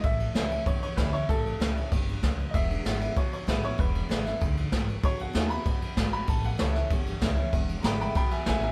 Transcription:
<<
  \new Staff \with { instrumentName = "Upright piano" } { \time 4/4 \key e \mixolydian \tempo 4 = 192 e''2 cis''8 cis''8 b'8 cis''8 | a'2 r2 | <dis'' e''>2 cis''8 cis''8 b'8 cis''8 | b'2 r2 |
cis''8 fis''8 gis''8 <ais'' b''>2 b''8 | a''8 fis''8 <a' cis''>2 r4 | r4 <g'' ais'' b''>8 <g'' b''>8 <g'' b''>8 <e'' gis''>8 <e'' gis''>8 <e'' gis''>8 | }
  \new Staff \with { instrumentName = "Steel-string acoustic guitar" } { \time 4/4 \key e \mixolydian << { r4 <e g cis' e'>8 <cis' e'>8 r4 <e g cis' e'>8 <cis' e'>8 | r4 <e g cis' e'>8 <cis' e'>8 r2 | r4 <d gis b e'>8 <b e'>8 r4 <d gis b e'>8 <b e'>8 | r4 <d gis b e'>8 <b e'>8 r2 |
r4 <dis a b fis'>8 <b fis'>8 r2 | r4 <e g cis' e'>8 <cis' e'>8 r4 <e g cis' e'>8 <cis' e'>8 | r4 <d gis b e'>4 r4 <d gis b e'>8 <b e'>8 | } \\ { a,2 e,2 | a,2 g,4 fis,4 | e,2 b,2 | e,2 gis,4 a,4 |
b,2 fis,4 b,4 | a,2 e,2 | e,2 b,2 | } >> }
  \new Staff \with { instrumentName = "Upright bass" } { \clef bass \time 4/4 \key e \mixolydian a,,4 cis,4 e,4 d,4 | a,,4 cis,4 g,,4 cis,4 | e,,4 gis,,4 b,,4 a,,4 | e,,4 gis,,4 d,4 gis,,4 |
b,,4 dis,4 fis,4 gis,,4 | a,,4 cis,4 g,,4 cis,4 | e,,4 gis,,4 b,,4 a,,4 | }
  \new DrumStaff \with { instrumentName = "Drums" } \drummode { \time 4/4 <bd cymr>8 cymr8 <cymr sn>8 cymr8 <bd cymr>8 cymr8 <bd cymr sn>8 cymr8 | <bd cymr>8 cymr8 <cymr sn>8 cymr8 <bd cymr>8 cymr8 <bd cymr sn>8 cymr8 | <bd cymr>8 cymr8 <cymr sn>8 cymr8 <bd cymr>8 cymr8 <bd cymr sn>8 cymr8 | <bd cymr>8 cymr8 <cymr sn>8 <cymr sn>8 <bd cymr>8 cymr8 <bd cymr sn>8 cymr8 |
<bd cymr>8 cymr8 <cymr sn>8 cymr8 <bd cymr>8 cymr8 <bd cymr sn>8 cymr8 | <bd cymr>8 cymr8 <cymr sn>8 <cymr sn>8 <bd cymr>8 cymr8 <bd cymr sn>8 cymr8 | <bd cymr>8 cymr8 <cymr sn>8 cymr8 <bd cymr>8 cymr8 <bd cymr sn>8 cymr8 | }
>>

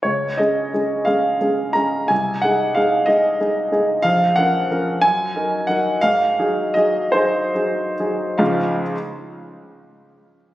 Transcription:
\new Staff \with { instrumentName = "Grand piano" } { \time 6/8 \key des \major \tempo 4. = 58 << { des''8 ees''4 f''4 bes''8 | aes''8 ges''8 f''8 ees''4. | f''8 ges''4 aes''4 ges''8 | f''4 ees''8 c''4. |
<des, aes, f aes des' f' f''>8 r2 r8 | } \\ { des,8 <aes des' aes'>8 <aes des' aes'>8 <aes des' aes'>8 <aes des' aes'>8 <aes des' aes'>8 | c,8 <aes ees' aes'>8 <aes ees' aes'>8 <aes ees' aes'>8 <aes ees' aes'>8 <aes ees' aes'>8 | bes,,8 <f des' bes'>8 <f des' bes'>8 ges,8 <ges ees' bes'>8 <ges ees' bes'>8 | aes,8 <ges ees' aes'>8 <ges ees' aes'>8 <ges ees' aes'>8 <ges ees' aes'>8 <ges ees' aes'>8 |
r2. | } >> }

